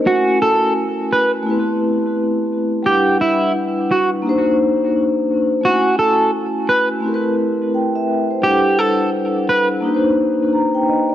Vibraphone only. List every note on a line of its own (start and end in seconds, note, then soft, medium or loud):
0.00 1.41 A3 medium
0.00 1.41 C#4 medium
0.00 0.25 A#4 medium
0.06 1.42 E4 medium
0.06 1.44 G#5 medium
1.43 2.81 A3 medium
1.43 1.53 B3 medium
1.43 2.83 E4 medium
1.48 2.85 C4 medium
1.48 2.84 G4 medium
1.48 2.84 B4 medium
2.83 4.20 G3 medium
2.83 4.21 D4 medium
2.83 4.22 E4 medium
2.88 4.24 B4 medium
2.88 4.23 F#5 medium
4.22 5.60 A#3 medium
4.22 5.61 D4 medium
4.22 5.62 D#4 medium
4.27 5.63 G4 medium
4.27 5.64 C5 medium
5.61 6.99 A3 medium
5.61 7.00 C#4 medium
5.65 7.01 E4 medium
5.65 7.02 F#4 medium
5.65 7.03 G#5 medium
7.00 8.38 A3 medium
7.00 8.40 C4 medium
7.00 8.40 E4 medium
7.06 8.41 G4 medium
7.06 7.13 A#4 medium
7.14 7.77 B4 medium
7.74 7.94 G5 medium
7.95 8.28 E5 medium
8.31 8.63 C5 medium
8.40 9.78 G3 medium
8.40 9.79 D4 medium
8.40 9.80 E4 medium
8.46 8.53 A4 medium
8.46 9.81 F#5 medium
8.54 9.85 B4 medium
9.80 11.15 A#3 medium
9.80 11.15 D4 medium
9.80 11.15 D#4 medium
9.86 11.15 G4 medium
9.86 9.93 B4 medium
9.94 11.15 C5 medium
10.53 10.73 A#5 medium
10.74 10.87 G5 medium
10.88 11.08 D#5 medium
11.09 11.15 D5 medium